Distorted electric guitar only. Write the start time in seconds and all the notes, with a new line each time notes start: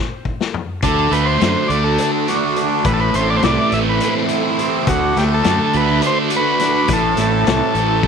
0.84 D3
1.11 A3
1.40 D3
1.71 A3
2.00 D4
2.28 F#4
2.57 D4
2.86 A2
3.15 A3
3.44 E3
3.72 A3
4.03 C4
4.30 E4
4.60 C4
4.88 D3
5.17 A3
5.46 D3
5.74 A3
6.02 D4
6.31 F#4
6.59 D4
6.88 A2
7.18 A3
7.46 E3
7.75 A3